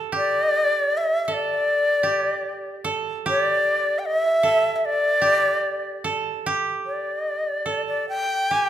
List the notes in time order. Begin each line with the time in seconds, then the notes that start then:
Already playing: G4 A4
0.12 G4
0.16 D5
0.97 E5
1.25 A4 E5
1.33 D5
2.03 G4
2.84 A4
3.26 G4 C#5
3.42 D5
3.99 G5
4.05 D#5
4.17 E5
4.43 A4
4.76 E5
4.85 D5
5.21 G4
6.04 A4
6.46 G4
6.86 D5
7.66 A4
7.87 D5
8.09 G5
8.51 G4 G#5
8.65 G5